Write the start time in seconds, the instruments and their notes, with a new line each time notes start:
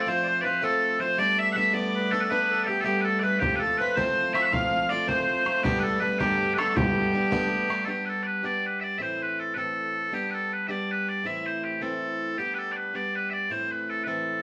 0.01 bagpipes D5
0.07 steel-string acoustic guitar F3 A3 C4 F4, accordion C5, bagpipes C5
0.23 accordion C5 D5
0.41 steel-string acoustic guitar F3, accordion B4 C5, bagpipes B4 D5
0.45 steel-string acoustic guitar A3 C4 F4
0.62 steel-string acoustic guitar F3 A3 C4 F4, accordion A4, bagpipes A4
0.99 steel-string acoustic guitar F3 A3 C4 F4, bagpipes C5, accordion C5
1.18 steel-string acoustic guitar G3 A3 B3 D4, bagpipes D5, accordion D5
1.39 bagpipes E5, accordion E5
1.52 steel-string acoustic guitar G3 A3, bagpipes E5 F#5
1.57 steel-string acoustic guitar B3 D4
1.73 steel-string acoustic guitar G3 A3 B3 D4, bagpipes D5, accordion D5
1.95 accordion B4
2.11 steel-string acoustic guitar G3 A3 B3 D4, bagpipes A4, accordion A4
2.20 bagpipes A4 B4
2.29 steel-string acoustic guitar G3 A3 B3 D4, bagpipes B4, accordion B4
2.50 accordion A4
2.63 steel-string acoustic guitar G3, bagpipes G4 A4
2.68 steel-string acoustic guitar A3 B3 D4, accordion G4
2.81 steel-string acoustic guitar G3, bagpipes G4 A4
2.85 steel-string acoustic guitar A3 B3 D4, accordion G4
3.01 bagpipes A4 B4
3.06 accordion A4
3.19 steel-string acoustic guitar G3, bagpipes B4 D5
3.24 steel-string acoustic guitar A3 B3 D4, accordion B4
3.39 steel-string acoustic guitar F3 A3 C4 F4, bagpipes G4, accordion G4, bodhran
3.56 bagpipes A4 B4
3.61 accordion A4
3.78 steel-string acoustic guitar F3 A3 C4 F4, bagpipes B4, accordion B4
3.95 steel-string acoustic guitar F3 A3 C4 F4, bagpipes C5, accordion C5, bodhran
4.33 steel-string acoustic guitar F3 A3 C4 F4, bagpipes E5, accordion E5, bodhran
4.42 bagpipes E5 F#5
4.52 steel-string acoustic guitar F3 A3 C4 F4, accordion F5, bagpipes F5, bodhran
4.89 steel-string acoustic guitar F3 A3 C4 F4, accordion D5, bagpipes D5
5.07 steel-string acoustic guitar F3 A3 C4 F4, accordion C5, bagpipes C5, bodhran
5.45 steel-string acoustic guitar F3 A3 C4 F4, bodhran
5.63 steel-string acoustic guitar G2 D3 G3 A3 B3 D4, bagpipes G4, accordion G4, bodhran
5.79 bagpipes A4 B4
5.84 accordion A4
6.00 steel-string acoustic guitar G3 A3 B3 D4, bagpipes B4, accordion B4
6.19 steel-string acoustic guitar G2 D3 G3 A3 B3 D4, bagpipes G4, accordion G4, bodhran
6.54 steel-string acoustic guitar G3, bagpipes A4 B4
6.58 steel-string acoustic guitar A3 B3 D4, accordion A4, bodhran
6.69 bagpipes A4
6.75 steel-string acoustic guitar G2 D3 G3 A3 B3 D4, bagpipes G4, accordion G4, bodhran
7.13 steel-string acoustic guitar G3 A3 B3 D4
7.30 steel-string acoustic guitar G2 D3 G3 A3 B3 D4, bodhran
7.68 steel-string acoustic guitar G3 A3 B3 D4, bodhran
7.85 steel-string acoustic guitar G3 B3 D4 G4, bagpipes A4
7.89 bagpipes G4
8.05 bagpipes A4 B4
8.23 bagpipes B4 D5
8.43 steel-string acoustic guitar G3 B3 D4 G4, bagpipes D5
8.66 bagpipes B4
8.80 bagpipes D5 E5
8.98 steel-string acoustic guitar A2 E3 A3 C4 E4, bagpipes C5 E5
9.22 bagpipes B4
9.40 bagpipes A4
9.54 steel-string acoustic guitar A2 E3 A3 C4 E4, bagpipes A4 B4
10.12 steel-string acoustic guitar G3 B3 D4 G4, bagpipes G4
10.31 bagpipes A4 B4
10.53 bagpipes B4
10.67 steel-string acoustic guitar G3 B3 D4 G4, bagpipes D5 E5
10.91 bagpipes B4
11.08 bagpipes D5
11.24 steel-string acoustic guitar A2 E3 A3 C4 E4, bagpipes E5
11.46 bagpipes C5
11.64 bagpipes G4
11.81 steel-string acoustic guitar A2 E3 A3 C4 E4, bagpipes A4
12.38 steel-string acoustic guitar G3 B3 D4 G4, bagpipes G4
12.54 bagpipes B4
12.58 bagpipes A4
12.72 bagpipes D5
12.76 bagpipes B4
12.94 steel-string acoustic guitar G3 B3 D4 G4, bagpipes D5
13.15 bagpipes B4
13.30 bagpipes D5 E5
13.50 steel-string acoustic guitar A2 E3 A3 C4 E4, bagpipes C5
13.71 bagpipes B4
13.90 bagpipes A4
14.04 steel-string acoustic guitar A3 C4 E4, bagpipes B4
14.08 steel-string acoustic guitar A2 E3, bagpipes A4